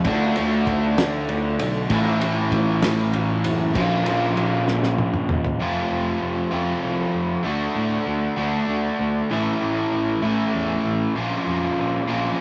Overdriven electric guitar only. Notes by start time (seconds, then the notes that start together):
0.05 D3 A3 D4 F#4
1.89 A2 E3 A3 C#4 E4
3.74 A#2 F3 A#3 C#4 F4
5.59 F2 C3 F3 A3 C4 F4
6.51 F2 C3 F3 A3 C4 F4
7.43 D3 A3 D4 F#4
8.36 D3 A3 D4 F#4
9.29 A2 E3 A3 C#4 E4
10.22 A2 E3 A3 C#4 E4
11.15 A#2 F3 A#3 C#4 F4
12.07 A#2 F3 A#3 C#4 F4